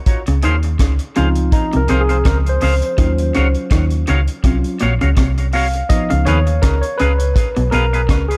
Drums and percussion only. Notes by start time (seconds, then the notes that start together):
0.06 kick, closed hi-hat
0.27 closed hi-hat
0.42 closed hi-hat
0.63 closed hi-hat
0.79 kick, cross-stick, closed hi-hat
0.99 closed hi-hat
1.16 closed hi-hat
1.35 closed hi-hat
1.52 kick, closed hi-hat
1.73 closed hi-hat
1.88 closed hi-hat
2.09 closed hi-hat
2.25 kick, cross-stick, closed hi-hat
2.46 closed hi-hat
2.61 open hi-hat
2.82 closed hi-hat
2.98 kick, closed hi-hat
3.18 closed hi-hat
3.35 closed hi-hat
3.55 closed hi-hat
3.71 kick, cross-stick, closed hi-hat
3.91 closed hi-hat
4.07 closed hi-hat
4.28 closed hi-hat
4.44 kick, closed hi-hat
4.64 closed hi-hat
4.79 closed hi-hat
5.01 closed hi-hat
5.17 kick, cross-stick, closed hi-hat
5.38 closed hi-hat
5.53 open hi-hat
5.74 closed hi-hat
5.90 kick, closed hi-hat
6.10 closed hi-hat
6.27 closed hi-hat
6.47 closed hi-hat
6.63 kick, cross-stick, closed hi-hat
6.83 closed hi-hat
6.99 closed hi-hat
7.20 closed hi-hat
7.36 kick, closed hi-hat
7.56 closed hi-hat
7.72 closed hi-hat
7.94 closed hi-hat
8.09 kick, cross-stick, closed hi-hat
8.31 closed hi-hat